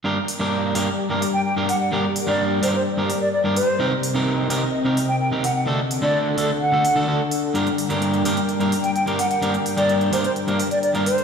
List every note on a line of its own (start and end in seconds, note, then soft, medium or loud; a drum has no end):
0.04 0.17 G2 medium
0.04 3.76 G3 medium
0.04 0.17 A#3 medium
0.04 0.17 D4 medium
0.04 3.76 G4 medium
0.04 0.17 G4 medium
0.04 5.63 A#4 medium
0.04 0.17 A#4 medium
0.04 3.76 D5 medium
0.28 open hi-hat loud
0.39 0.72 G2 medium
0.39 0.72 A#3 medium
0.39 0.72 D4 medium
0.39 0.73 G4 medium
0.39 0.73 A#4 medium
0.74 0.87 G2 medium
0.74 0.87 A#3 medium
0.74 0.87 D4 medium
0.74 0.87 G4 medium
0.74 0.88 A#4 loud
0.74 open hi-hat loud
1.10 1.22 G2 medium
1.10 1.22 A#3 medium
1.10 1.22 D4 medium
1.10 1.23 G4 medium
1.10 1.23 A#4 medium
1.22 open hi-hat medium
1.34 1.41 G5 medium
1.46 1.53 G5 medium
1.56 1.69 G2 medium
1.56 1.69 A#3 medium
1.56 1.69 D4 medium
1.56 1.69 G4 medium
1.56 1.70 A#4 medium
1.69 1.77 F#5 medium
1.69 open hi-hat loud
1.81 1.88 F#5 medium
1.92 2.04 G2 medium
1.92 2.04 A#3 medium
1.92 2.04 D4 medium
1.92 2.05 G4 medium
1.92 2.05 A#4 loud
2.16 open hi-hat loud
2.27 2.60 G2 medium
2.27 2.60 A#3 medium
2.27 2.60 D4 medium
2.27 2.60 G4 medium
2.27 2.60 A#4 loud
2.27 2.43 D5 medium
2.62 2.74 G2 medium
2.62 2.75 A#3 medium
2.62 2.75 D4 medium
2.62 2.75 G4 medium
2.62 2.75 A#4 loud
2.62 2.70 C5 medium
2.62 open hi-hat loud
2.74 2.82 C5 medium
2.97 3.10 G2 medium
2.97 3.10 A#3 medium
2.97 3.10 D4 medium
2.97 3.10 G4 medium
2.97 3.10 A#4 medium
3.10 open hi-hat loud
3.21 3.29 D5 medium
3.33 3.41 D5 medium
3.44 3.57 G2 medium
3.44 3.57 A#3 medium
3.44 3.57 D4 medium
3.44 3.57 G4 medium
3.44 3.57 A#4 medium
3.56 3.85 C5 medium
3.56 open hi-hat loud
3.79 3.92 C3 medium
3.79 5.66 C3 medium
3.79 3.92 C4 medium
3.79 5.66 C4 medium
3.79 3.92 D#4 medium
3.79 3.92 G4 medium
3.79 3.92 A#4 loud
3.79 5.66 D#5 medium
4.03 open hi-hat loud
4.14 4.47 C3 medium
4.14 4.47 C4 medium
4.14 4.47 D#4 medium
4.14 4.48 G4 medium
4.14 4.48 A#4 loud
4.49 4.62 C3 medium
4.49 4.62 C4 medium
4.49 4.62 D#4 medium
4.49 4.62 G4 medium
4.49 4.63 A#4 loud
4.49 open hi-hat loud
4.85 4.97 C3 medium
4.85 4.97 C4 medium
4.85 4.97 D#4 medium
4.85 4.98 G4 medium
4.85 4.98 A#4 medium
4.97 open hi-hat loud
5.09 5.16 G5 medium
5.21 5.28 G5 medium
5.31 5.44 C3 medium
5.31 5.44 C4 medium
5.31 5.44 D#4 medium
5.31 5.44 G4 medium
5.31 5.45 A#4 medium
5.44 5.52 F#5 medium
5.44 open hi-hat loud
5.56 5.63 F#5 medium
5.67 5.79 D3 medium
5.67 7.53 D3 medium
5.67 5.79 A3 medium
5.67 5.79 D4 medium
5.67 11.24 D4 medium
5.67 5.80 F#4 medium
5.67 7.53 A4 medium
5.67 5.80 A4 loud
5.67 7.53 F#5 medium
5.91 open hi-hat loud
6.02 6.35 D3 medium
6.02 6.35 A3 medium
6.02 6.35 D4 medium
6.02 6.35 F#4 medium
6.02 6.35 A4 loud
6.02 6.18 D5 medium
6.37 6.50 D3 medium
6.37 6.50 A3 medium
6.37 6.50 D4 medium
6.37 6.50 F#4 medium
6.37 6.50 A4 loud
6.37 open hi-hat loud
6.61 6.96 F#5 medium
6.72 6.85 D3 medium
6.72 6.85 A3 medium
6.72 6.85 D4 medium
6.72 6.85 F#4 medium
6.72 6.85 A4 medium
6.85 open hi-hat loud
6.96 7.06 D3 medium
6.96 7.06 A3 medium
6.96 7.06 D4 medium
6.96 7.06 F#4 medium
6.96 7.07 A4 loud
7.07 7.20 D3 medium
7.07 7.20 A3 medium
7.07 7.20 D4 medium
7.07 7.20 F#4 medium
7.07 7.20 A4 medium
7.31 open hi-hat loud
7.54 7.67 G2 medium
7.54 11.24 G3 medium
7.54 7.67 A#3 medium
7.54 7.67 D4 medium
7.54 7.67 G4 medium
7.54 11.24 A#4 medium
7.54 7.67 A#4 loud
7.54 11.24 G5 medium
7.54 closed hi-hat soft
7.67 closed hi-hat soft
7.78 open hi-hat loud
7.89 8.22 G2 medium
7.89 8.22 A#3 medium
7.89 8.22 D4 medium
7.89 8.23 G4 medium
7.89 8.23 A#4 loud
7.89 closed hi-hat soft
8.02 closed hi-hat soft
8.14 closed hi-hat soft
8.24 8.37 G2 medium
8.24 8.37 A#3 medium
8.24 8.37 D4 medium
8.24 8.37 G4 medium
8.24 8.38 A#4 loud
8.24 open hi-hat loud
8.37 closed hi-hat soft
8.49 closed hi-hat soft
8.60 8.72 G2 medium
8.60 8.72 A#3 medium
8.60 8.72 D4 medium
8.60 8.73 G4 medium
8.60 8.73 A#4 medium
8.60 closed hi-hat soft
8.72 open hi-hat medium
8.84 8.91 G5 medium
8.84 closed hi-hat soft
8.96 9.03 G5 medium
8.96 closed hi-hat soft
9.06 9.19 G2 medium
9.06 9.19 A#3 medium
9.06 9.19 D4 medium
9.06 9.19 G4 medium
9.06 9.20 A#4 medium
9.06 closed hi-hat soft
9.19 9.27 F#5 medium
9.19 open hi-hat loud
9.31 9.38 F#5 medium
9.31 closed hi-hat soft
9.42 9.54 G2 medium
9.42 9.54 A#3 medium
9.42 9.54 D4 medium
9.42 9.55 G4 medium
9.42 9.55 A#4 loud
9.42 closed hi-hat soft
9.54 closed hi-hat soft
9.66 open hi-hat loud
9.77 10.10 G2 medium
9.77 10.10 A#3 medium
9.77 10.10 D4 medium
9.77 10.10 G4 medium
9.77 10.10 A#4 loud
9.77 9.93 D5 medium
9.77 closed hi-hat soft
9.89 closed hi-hat soft
10.01 closed hi-hat soft
10.12 10.24 G2 medium
10.12 10.25 A#3 medium
10.12 10.25 D4 medium
10.12 10.25 G4 medium
10.12 10.25 A#4 loud
10.12 10.20 C5 medium
10.12 open hi-hat loud
10.24 10.32 C5 medium
10.24 closed hi-hat soft
10.36 closed hi-hat soft
10.47 10.60 G2 medium
10.47 10.60 A#3 medium
10.47 10.60 D4 medium
10.47 10.60 G4 medium
10.47 10.60 A#4 medium
10.47 closed hi-hat soft
10.60 open hi-hat medium
10.71 10.79 D5 medium
10.71 closed hi-hat soft
10.83 10.91 D5 medium
10.83 closed hi-hat soft
10.94 11.07 G2 medium
10.94 11.07 A#3 medium
10.94 11.07 D4 medium
10.94 11.07 G4 medium
10.94 11.07 A#4 medium
10.94 closed hi-hat soft
11.06 11.24 C5 medium
11.06 open hi-hat loud
11.18 closed hi-hat soft